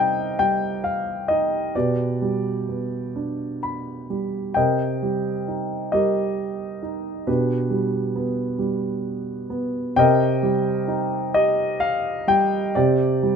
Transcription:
Already playing: C3 G3 D#4 G4 A#4 D#5 F5 G5
0.39 G3 G5
0.84 F5
1.28 D#4 D#5
1.75 B2 G4 B4 D5
2.22 G3
2.69 B3
3.16 D4
3.63 B5
4.10 G3
4.54 C3 A#4 D#5 G5
5.03 G3
5.48 D#4
5.92 G3 G4 A#4 D#5
6.83 D#4
7.27 B2 D4 G4 B4
7.71 G3
8.16 B3
8.59 G3
9.50 B3
9.96 C3 A#4 D#5 G5
10.43 G3
10.88 D#4
11.34 G4 D#5
11.80 F5
12.28 G3 G5
12.75 C3 G4 D5
13.23 G3

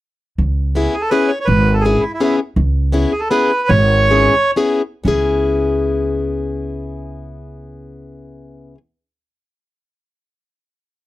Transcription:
0.38 C#2
0.75 B3 C#4 E4 G#4
0.94 G#4
1.01 A4
1.10 B3 C#4 E4 G#4 B4
1.28 C#5
1.40 C#5
1.45 G#1 B4
1.74 A4
1.81 G#4
1.85 B3 C#4 E4 G#4
2.00 E4
2.14 E4
2.20 B3 C#4 E4 G#4
2.56 C#2
2.92 B3 C#4 E4 G#4
3.12 G#4
3.20 A4
3.30 B3 C#4 E4 G#4 B4
3.69 G#1 C#5
4.10 B3 C#4 E4 G#4
4.56 B3 C#4 E4 G#4
5.04 C#2 B3 C#4 E4
5.08 G#4

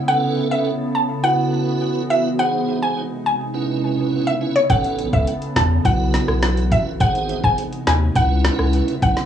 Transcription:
Already playing: C#3 B3
0.08 C#4 A4 B4 F#5
0.51 C#4 A4 B4 E5
0.95 A5
1.23 E3 B3 E4 F#4 B4 F#5
2.10 E4 F#4 B4 E5
2.39 C3 G#3 D#4 G#4 C5 F#5
2.82 D#4 G#4 C5 G#5
3.26 G#5
3.54 C#3 B3 C#4 E4 B4
4.27 E5
4.41 C#4 E4 B4
4.56 C#5
4.69 A1 C#3 C#4 A4 B4 F#5, kick, closed hi-hat
4.84 closed hi-hat
4.99 closed hi-hat
5.13 C#2 C#4 A4 B4 E5, kick
5.27 closed hi-hat
5.42 closed hi-hat
5.56 E2 A5, finger snap, kick, snare, closed hi-hat
5.85 B1 E4 F#4 B4 F#5, kick, closed hi-hat
6.14 snare, closed hi-hat
6.28 B1, cross-stick
6.42 finger snap, snare, closed hi-hat
6.57 closed hi-hat
6.72 A1 E4 F#4 B4 E5, kick, closed hi-hat
7.00 G#1 D#4 G#4 C5 F#5, kick, closed hi-hat
7.15 closed hi-hat
7.29 closed hi-hat
7.43 G#1 D#4 G#4 C5 G#5, kick
7.58 closed hi-hat
7.73 closed hi-hat
7.87 D#2 G#5, finger snap, snare, closed hi-hat
8.16 C#2 C#3 B3 C#4 E4 B4 F#5, kick, closed hi-hat
8.45 finger snap, snare, closed hi-hat
8.59 C#2, cross-stick
8.73 closed hi-hat
8.88 closed hi-hat
9.02 B1 C#4 E4 B4 F#5, kick, closed hi-hat
9.17 snare

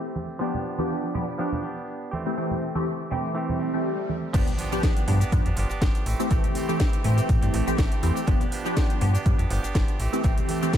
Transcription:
Already playing: A3 C4 G4
0.05 tambourine
0.16 high conga
0.29 tambourine
0.39 F3 B3 D4 G4, tambourine
0.44 G4
0.53 tambourine, low conga
0.78 F3 B3 D4 G4, tambourine, high conga
0.90 tambourine
1.04 tambourine
1.14 F3 B3 D4 G4, low conga
1.28 tambourine
1.38 F3 B3 D4 G4, tambourine
1.52 tambourine, high conga, low conga
1.63 B3 D4 G4
1.77 tambourine
1.87 tambourine
2.02 tambourine
2.11 A3 C4 G4, high conga
2.16 E3
2.26 E3 A3 C4 G4, tambourine
2.37 E3 A3 C4 G4, tambourine
2.51 tambourine, low conga
2.75 E3 A3 C4 G4, tambourine, high conga
2.86 tambourine
3.00 tambourine
3.10 E3 A3 C4 G4, low conga
3.25 tambourine
3.35 E3 A3 C4 G4, tambourine, swell
3.49 tambourine, high conga, low conga
3.59 A3 C4 G4
3.73 E3 A3 C4 G4, tambourine
3.84 tambourine
3.99 tambourine
4.09 high conga
4.23 tambourine
4.33 G1 F3 B3 D4 G4, kick, closed hi-hat, crash, tambourine, impact, shaker
4.47 B3 D4 G4, closed hi-hat, tambourine, low conga, shaker
4.58 F3 B3 D4 G4, open hi-hat, tambourine
4.71 F3 B3 D4 G4, tambourine, shaker
4.83 F3 B3 D4 G4, kick, snare, closed hi-hat, shaker
4.96 closed hi-hat, tambourine, shaker
5.07 G2 F3 B3 D4 G4, open hi-hat, tambourine, low conga
5.20 B3 D4 G4, closed hi-hat, tambourine, shaker
5.32 G2 F3 B3 D4 G4, kick, closed hi-hat, tambourine, high conga, shaker
5.45 F2 B3 D4 G4, closed hi-hat, tambourine, low conga, shaker
5.56 G1 F3 B3 D4 G4, open hi-hat, tambourine
5.69 G1 B3 D4 G4, tambourine, shaker
5.81 G1 F3 B3 D4 G4, kick, snare, closed hi-hat, tambourine, shaker
5.95 closed hi-hat, tambourine, shaker
6.05 A1 E3 A3 C4 G4, open hi-hat, tambourine
6.19 E3 A3 C4 G4, tambourine, shaker
6.30 A1 E3 A3 C4 G4, kick, closed hi-hat, tambourine, shaker
6.43 A3 C4 G4, closed hi-hat, tambourine, low conga, shaker
6.54 E3 A3 C4 G4, open hi-hat, tambourine, high conga
6.68 E3 A3 C4 G4, tambourine, shaker
6.79 E3 A3 C4 G4, kick, snare, closed hi-hat, tambourine, shaker
6.93 closed hi-hat, tambourine, shaker
7.04 A2 E3 A3 C4 G4, open hi-hat, tambourine, low conga
7.17 A3 C4 G4, closed hi-hat, tambourine, shaker
7.29 A2, kick, closed hi-hat, tambourine, shaker
7.42 G2 A3 C4 G4, closed hi-hat, tambourine, high conga, low conga, shaker
7.53 A1 E3 A3 C4 G4, open hi-hat, tambourine
7.66 A1 E3 A3 C4 G4, tambourine, shaker
7.77 A1 E3 A3 C4 G4, kick, snare, closed hi-hat, tambourine, shaker
7.91 closed hi-hat, tambourine, shaker
8.02 E2 E3 A3 C4 G4, open hi-hat, tambourine
8.15 A3 C4 G4, tambourine, shaker
8.27 G1 F3 B3 D4 G4, kick, closed hi-hat, tambourine, shaker
8.40 B3 D4 G4, closed hi-hat, tambourine, low conga, shaker
8.51 F3 B3 D4 G4, open hi-hat, tambourine
8.64 F3 B3 D4 G4, tambourine, shaker
8.76 F3 B3 D4 G4, kick, snare, closed hi-hat, tambourine, shaker
8.90 closed hi-hat, tambourine, shaker
9.01 G2 F3 B3 D4 G4, open hi-hat, tambourine, low conga
9.14 B3 D4 G4, closed hi-hat, tambourine, shaker
9.25 G2 F3 B3 D4 G4, kick, closed hi-hat, tambourine, high conga, shaker
9.38 F2 B3 D4 G4, closed hi-hat, tambourine, low conga, shaker
9.49 G1 F3 B3 D4 G4, open hi-hat, tambourine
9.63 G1 B3 D4 G4, tambourine, shaker
9.74 G1 F3 B3 D4 G4, kick, snare, closed hi-hat, tambourine, shaker
9.88 closed hi-hat, tambourine, shaker
9.99 A1 E3 A3 C4 G4, open hi-hat, tambourine
10.13 E3 A3 C4 G4, tambourine, shaker
10.23 A1 E3 A3 C4 G4, kick, closed hi-hat, tambourine, shaker
10.37 A3 C4 G4, closed hi-hat, tambourine, low conga, shaker
10.48 E3 A3 C4 G4, open hi-hat, tambourine, high conga
10.61 E3 A3 C4 G4, tambourine, shaker
10.73 E3 A3 C4, kick, snare, closed hi-hat, tambourine, shaker

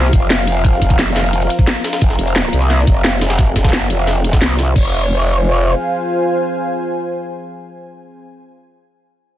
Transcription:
Already playing: C2 F4 C5 F5 A#5
0.13 F1, kick, closed hi-hat, ride
0.30 snare, closed hi-hat, ride
0.47 closed hi-hat, open hi-hat
0.64 kick, closed hi-hat, ride
0.82 kick, closed hi-hat, ride
0.90 kick, ride
0.99 F1, snare, closed hi-hat, ride
1.16 snare, closed hi-hat, ride
1.33 closed hi-hat, ride
1.42 ride
1.50 closed hi-hat, ride
1.59 kick, ride
1.67 snare, closed hi-hat, ride
1.76 ride
1.84 snare, closed hi-hat, ride
1.93 snare, ride
2.02 F1, kick, closed hi-hat, ride
2.10 snare
2.19 F1, closed hi-hat, ride
2.27 ride
2.36 snare, closed hi-hat, ride
2.53 C2, closed hi-hat, ride
2.62 ride
2.70 snare, closed hi-hat, ride
2.87 F1, kick, closed hi-hat, ride
3.04 snare, closed hi-hat, ride
3.21 snare, closed hi-hat, ride
3.30 snare, ride
3.39 kick, snare, closed hi-hat, ride
3.56 kick, snare, closed hi-hat, ride
3.64 kick, snare, ride
3.69 snare, ride
3.73 F#1, snare, closed hi-hat, ride
3.90 F1, closed hi-hat, ride
4.07 snare, closed hi-hat, ride
4.24 closed hi-hat, ride
4.33 kick, snare, ride
4.42 C2, snare, closed hi-hat, ride
4.50 ride
4.59 snare, closed hi-hat, ride
4.76 F1 F4 C5 F5 G#5, kick, crash

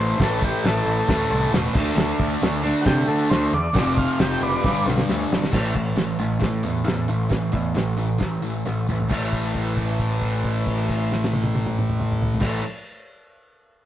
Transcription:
Already playing: A1 A2 E3 A3
0.00 C5
0.18 A1 A2 E3 A4, kick, snare, crash
0.23 A3
0.42 G4, kick
0.64 A1 A4, snare, tambourine, crash
0.85 A1
1.08 D2 A2 E3, kick, snare, crash
1.13 A3
1.30 C2
1.51 E1, snare, tambourine, crash
1.75 D2 D3 A3, kick, crash
1.80 D4
1.95 D2, snare, crash
2.20 D2, kick
2.40 D2, snare, tambourine, crash
2.64 A3 D4
2.68 D3
2.81 F#4
2.86 C3 G4, kick, snare, crash
3.07 D3 A4
3.29 D2 C5, snare, tambourine, crash
3.52 E2 D5
3.73 F1 F2 C3, kick, snare, crash
3.78 F3
3.98 F5, kick
4.19 F1 G5, snare, tambourine, crash
4.41 F#1 B4 D5
4.61 G1 G2 D3, kick
4.66 G3, snare
4.86 B1, snare
4.98 snare
5.09 D2, snare, tambourine
5.31 G1, snare
5.44 snare
5.51 A1 A2 E3 A3, kick, snare, crash, tambourine
5.74 A1 A2 E3, kick, tambourine
5.95 A1 A2 E3, snare, open hi-hat, tambourine
6.11 tambourine
6.19 A1 A2 E3, tambourine
6.40 A2 E3, kick, snare, open hi-hat
6.54 tambourine
6.63 E2 A2 E3, tambourine
6.77 tambourine
6.84 E2 A2 E3, snare, open hi-hat, tambourine
7.08 A1 A2 E3, tambourine
7.29 A1 A2 E3, kick, snare, open hi-hat
7.34 tambourine
7.52 E2 A2 E3, kick, tambourine
7.75 A1 A2 E3, snare, open hi-hat, tambourine
7.89 tambourine
7.97 A2 E3, tambourine
8.18 A1 A2 E3, kick, snare, open hi-hat
8.34 tambourine
8.42 A2 E3, tambourine
8.54 tambourine
8.65 A1 A2 E3, snare, tambourine
8.87 A1 A2 E3, mid tom, tambourine
9.00 floor tom
9.09 A1 A2 E3, kick, crash, tambourine
9.13 A3
9.33 kick, crash
9.44 crash
9.55 kick, crash
9.67 crash
9.77 kick, crash
9.89 crash
9.99 kick, crash
10.10 crash
10.22 kick, crash
10.32 crash
10.44 kick, crash
10.55 crash
10.67 kick, crash
10.78 crash
10.89 kick, crash
11.02 crash
11.12 snare
11.24 snare
11.33 high tom
11.44 high tom
11.55 high tom
11.66 mid tom
11.79 mid tom
11.89 mid tom
12.00 mid tom
12.12 mid tom
12.22 floor tom
12.34 floor tom
12.40 A1 A2 E3, kick, snare, crash
12.45 A3

